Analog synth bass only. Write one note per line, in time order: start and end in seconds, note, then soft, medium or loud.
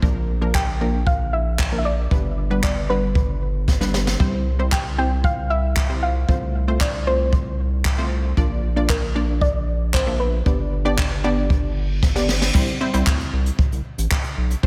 0.03 2.07 A#1 medium
2.11 4.16 G1 medium
4.20 6.25 C2 medium
6.29 8.33 C2 medium
8.37 10.42 A#1 medium
10.46 12.51 G1 medium
12.55 12.72 C2 loud
12.94 13.03 C2 medium
13.07 13.24 D2 medium
13.33 13.50 C2 medium
13.72 13.81 C2 medium
13.98 14.07 A1 medium
14.37 14.55 B1 medium
14.63 14.67 C2 loud